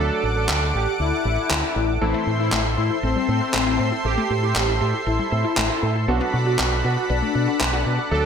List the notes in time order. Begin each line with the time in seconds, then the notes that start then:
Already playing: F#3 A3 D4 A4 D5
0.00 A4 F#5 D6
0.23 A1
0.36 A4
0.49 D2, clap
0.74 A1 G4
1.00 D2 E4
1.25 A1
1.51 D2, clap
1.76 A1
2.01 A1 E3 A3 C4 E4 A4 C5 E5 C6
2.14 A3
2.27 A2
2.40 E4
2.52 A1 A3, clap
2.65 E4
2.78 A2 E4 A4
2.91 E4
3.03 A1 C4 A4
3.16 G3
3.28 A2 C4
3.41 E4
3.54 A1 A3, clap
3.67 E4
3.79 A2 A4
3.92 E4
4.05 A1 A3 G4
4.18 A3
4.30 A2
4.43 E4 G4
4.56 A1 A3, clap
4.68 E4
4.81 A2 G4 A4
4.94 E4
5.06 A1 E4 A4
5.19 G3
5.32 A2 C4
5.45 E4
5.57 A1 A3, clap
5.70 E4
5.83 A2 A4
5.95 E4
6.08 B1 F#3 B3 D4 F#4 A4 D5 F#5 B5
6.21 B3
6.33 B2
6.46 F#4
6.59 B1 B3, clap
6.72 F#4
6.84 B2 F#4 B4
6.97 F#4
7.10 B1 D4 B4
7.22 A3
7.35 B2 D4
7.48 F#4
7.61 B1 B3, clap
7.73 F#4
7.86 B2 B4
7.99 F#4
8.11 D2 F#3 A3 D4 A4 D6